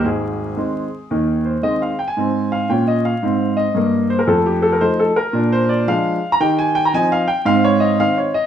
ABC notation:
X:1
M:4/4
L:1/16
Q:"Swing" 1/4=113
K:Ab
V:1 name="Grand piano"
A8- A2 c2 e f g a- | a2 f2 g e f4 e4 c B | =A G A B c A B3 c =d2 f3 b | g a g b a f g2 f d e2 f d e2 |]
V:2 name="Grand piano" clef=bass
[A,,,A,,]4 [E,A,C]4 [E,,E,]4 [E,A,C]4 | [A,,C]4 [B,,D]4 [A,,C]4 [G,,B,]4 | [F,,=A,]4 [F,A,E]4 [B,,=D]4 [F,_A,D]4 | [E,G]4 [F,CE]4 [A,,C]4 [E,CE]4 |]